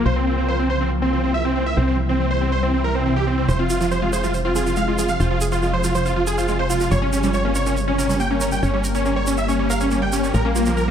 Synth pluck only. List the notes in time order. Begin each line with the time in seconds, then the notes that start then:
3.48 F3
3.59 C4
3.70 F4
3.81 F3
3.91 F3
4.02 G#3
4.13 G#4
4.23 F3
4.34 C5
4.45 C4
4.56 G#4
4.66 F3
4.77 G#3
4.88 G#3
4.98 G#4
5.09 F3
5.20 C5
5.31 F3
5.41 G#4
5.52 C5
5.63 G#3
5.73 F3
5.84 F3
5.95 F3
6.06 C5
6.16 F3
6.27 G#4
6.38 C5
6.48 G#3
6.59 F3
6.70 F4
6.80 F3
6.91 G3
7.02 C#4
7.13 G4
7.23 G3
7.34 G3
7.45 A#3
7.55 A#4
7.66 G3
7.77 C#5
7.88 C#4
7.98 A#4
8.09 G3
8.20 A#3
8.30 A#3
8.41 A#4
8.52 G3
8.63 C#5
8.73 G3
8.84 A#4
8.95 C#5
9.05 A#3
9.16 G3
9.27 G3
9.38 G3
9.48 C#5
9.59 G3
9.70 A#4
9.80 C#5
9.91 A#3
10.02 G3
10.13 G4
10.23 G3
10.34 F3
10.45 C#4
10.56 F4
10.66 F3
10.77 F3
10.88 A#3